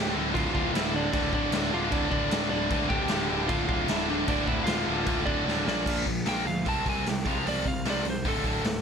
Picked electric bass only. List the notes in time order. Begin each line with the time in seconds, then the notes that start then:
Already playing: D1
0.16 D1
0.36 D1
0.55 D1
0.76 D1
1.14 D1
1.34 D1
1.54 D1
1.75 D1
1.92 D1
2.12 D1
2.33 D1
2.51 D1
2.72 D1
2.90 D1
3.12 D1
3.30 D1
3.50 D1
3.69 D1
3.90 D1
4.28 D1
4.48 D1
4.68 D1
4.87 D1
5.07 D1
5.27 D1
5.47 D1
5.67 A#1
5.87 A#1
6.07 A#1
6.27 A#1
6.46 D2
6.66 C2
6.86 C2
7.07 C2
7.26 C2
7.46 C2
7.65 C2
7.85 C2
8.05 C2
8.25 D1
8.44 D1
8.65 D1